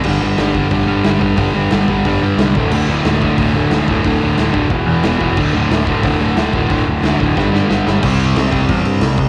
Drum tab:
CC |x-------|--------|x-------|--------|
HH |--o-o-o-|o-o-o-o-|--o-o-o-|o-o-o-o-|
SD |--o---o-|--o---o-|--o---o-|--o---o-|
BD |o--oo--o|o--oo--o|---oo--o|o--oo--o|

CC |x-------|--------|xxxxxxxx|
HH |--o-o-o-|o-o-----|--------|
SD |--o---o-|--o-oooo|--o---o-|
BD |o--oo--o|o--oo---|o--oo--o|